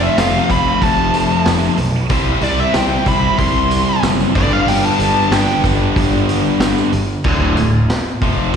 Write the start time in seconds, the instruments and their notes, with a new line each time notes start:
Already playing: distorted electric guitar F2 C3 F3 A3 C4 F4
0.04 lead electric guitar E5
0.18 picked electric bass F1, distorted electric guitar F2 C3 F3 A3 C4 F4, lead electric guitar F5, snare, open hi-hat, tambourine
0.50 picked electric bass F1, lead electric guitar B5, kick, open hi-hat, tambourine
0.82 picked electric bass F1, lead electric guitar A5, kick, open hi-hat
1.14 open hi-hat, tambourine
1.46 picked electric bass F1, snare, open hi-hat, tambourine
1.64 tambourine
1.77 picked electric bass B1, open hi-hat
2.09 picked electric bass C2, distorted electric guitar C3 G3 C4 E4 G4 C5, kick, open hi-hat, tambourine
2.41 picked electric bass C2, lead electric guitar D5, open hi-hat, tambourine
2.60 lead electric guitar E5
2.74 picked electric bass C2, lead electric guitar G5, snare, open hi-hat, tambourine
3.06 picked electric bass C2, distorted electric guitar G3 C4 E4 G4 C5, lead electric guitar B5, kick, open hi-hat, tambourine
3.10 distorted electric guitar C3
3.39 picked electric bass C2, lead electric guitar C6, kick, open hi-hat
3.71 open hi-hat, tambourine
4.03 picked electric bass F#1, snare, open hi-hat, tambourine
4.20 tambourine
4.34 picked electric bass G1, distorted electric guitar G2 D3 G3 B3 D4 G4, lead electric guitar D5, kick, open hi-hat
4.53 lead electric guitar F5
4.67 picked electric bass G1, lead electric guitar G5, open hi-hat
4.85 lead electric guitar A5
4.99 picked electric bass G1, open hi-hat, tambourine
5.18 tambourine
5.31 picked electric bass G1, distorted electric guitar G2 D3 G3 B3 D4 G4, lead electric guitar G5, snare, open hi-hat, tambourine
5.50 tambourine
5.64 picked electric bass G1, kick, open hi-hat, tambourine
5.96 picked electric bass G1, kick, open hi-hat, tambourine
6.13 tambourine
6.29 open hi-hat, tambourine
6.46 tambourine
6.60 picked electric bass G1, snare, open hi-hat, tambourine
6.78 tambourine
6.93 picked electric bass G1, open hi-hat
7.10 tambourine
7.24 picked electric bass D1, distorted electric guitar D2 A2 D3, kick, crash
7.57 picked electric bass D1, distorted electric guitar D2 A2, open hi-hat
7.90 snare, open hi-hat
8.22 picked electric bass F1, distorted electric guitar F2 C3 F3, kick, open hi-hat